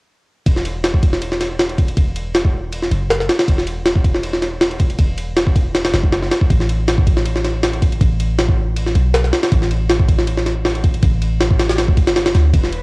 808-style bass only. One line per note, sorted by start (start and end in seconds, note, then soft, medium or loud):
0.46 1.96 E1 medium
1.97 2.90 E1 medium
2.91 3.28 F#1 medium
3.48 4.98 E1 medium
4.99 5.92 E1 loud
5.94 6.30 F#1 loud
6.50 8.00 A1 loud
8.01 8.94 A1 medium
8.95 9.32 B1 loud
9.52 11.01 A1 loud
11.03 11.99 A1 loud
11.97 12.33 G1 medium
12.35 12.52 D2 medium
12.54 12.83 E1 loud